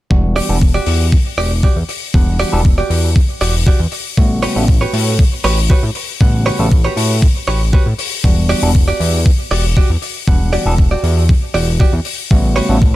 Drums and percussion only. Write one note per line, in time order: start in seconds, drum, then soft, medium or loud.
0.11 kick loud
0.36 open hi-hat loud
0.62 kick loud
0.86 open hi-hat loud
1.12 kick loud
1.38 open hi-hat medium
1.63 kick loud
1.89 open hi-hat loud
2.14 kick loud
2.39 open hi-hat medium
2.65 kick loud
2.91 open hi-hat loud
3.16 kick loud
3.41 open hi-hat loud
3.67 kick loud
3.92 open hi-hat loud
4.17 kick loud
4.43 open hi-hat loud
4.68 kick loud
4.94 open hi-hat loud
5.19 kick loud
5.44 open hi-hat loud
5.70 kick loud
5.95 open hi-hat loud
6.21 kick loud
6.46 open hi-hat medium
6.72 kick loud
6.97 open hi-hat loud
7.22 kick loud
7.47 open hi-hat loud
7.73 kick loud
7.99 open hi-hat loud
8.24 kick loud
8.49 open hi-hat loud
8.75 kick loud
9.01 open hi-hat loud
9.26 kick loud
9.51 open hi-hat loud
9.77 kick loud
10.02 open hi-hat medium
10.28 kick loud
10.53 open hi-hat loud
10.78 kick loud
11.04 open hi-hat medium
11.29 kick loud
11.54 open hi-hat medium
11.80 kick loud
12.05 open hi-hat loud
12.31 kick loud
12.56 open hi-hat medium
12.82 kick loud